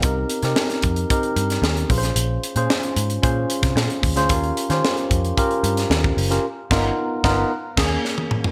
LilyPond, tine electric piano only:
\new Staff \with { instrumentName = "Tine electric piano" } { \time 4/4 \key ees \mixolydian \tempo 4 = 112 << { <b' f''>16 r2. r8. | r1 | r1 | r1 | } \\ { <c' ees' g' bes'>8. <c' ees' g' bes'>4~ <c' ees' g' bes'>16 <c' ees' g' bes'>4. <des' f' aes' b' c''>8~ | <des' f' aes' b' c''>8. <des' f' aes' c''>4~ <des' f' aes' c''>16 <des' f' aes' c''>4. r16 <des' f' aes' c''>16 | <des' f' g' bes'>8. <des' f' g' c''>4~ <des' f' g' c''>16 <des' f' g' bes'>4. r16 <des' f' g' bes'>16 | r8 <b dis' f' ais'>8 r8 <b dis' f' ais'>8 r8 <bes des' aes'>8 r4 | } >> }